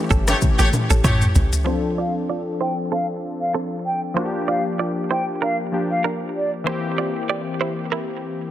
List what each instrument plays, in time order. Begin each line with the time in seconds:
Already playing: synth keys E3 A3 C#4 G4
0.10 log drum bass G1, clean electric guitar C#4 A4, kick, shaker
0.28 horn section A3 G4 C#5, cross-stick, low bongo, shaker
0.42 kick, high tom, low conga, shaker
0.59 log drum bass A1, horn section A3 G4 C#5, clean electric guitar A#3 G4, high bongo, shaker
0.73 mid tom, low bongo, shaker
0.90 log drum bass A1, clean electric guitar C#4 A4, shaker
1.04 log drum bass A2, horn section A3 G4 C#5, clean electric guitar E4 C#5, kick, mid tom, high bongo, shaker
1.21 mid tom, shaker
1.35 log drum bass A1, floor tom, low conga, shaker
1.53 floor tom, shaker
1.64 synth keys F3 C4 D4, clean electric guitar F4 C5
1.69 synth keys A4
1.98 clean electric guitar F4 D5, flute F5
2.29 clean electric guitar F4 D5
2.61 clean electric guitar E4 C5, flute G5
2.92 clean electric guitar C4 A4, flute F5
3.41 flute F5
3.54 clean electric guitar C4 A4
3.86 flute G5
4.14 synth keys F3 A#3 D4, clean electric guitar F4 C5
4.19 synth keys F#4
4.25 synth keys G4
4.48 clean electric guitar F4 D5, flute F5
4.79 clean electric guitar F4 D5
5.11 clean electric guitar E4 C5, flute G5
5.42 clean electric guitar D4 A#4, flute F5
5.72 synth keys F3 A#3 D4 G4
5.91 flute F5
6.04 clean electric guitar D4 A#4
6.36 flute D5
6.64 synth keys E3 A#3 C4, clean electric guitar E4 C5
6.69 synth keys G4
6.98 clean electric guitar F4 D5
7.29 clean electric guitar G4 D5
7.61 clean electric guitar E4 C5
7.92 clean electric guitar E4 A#4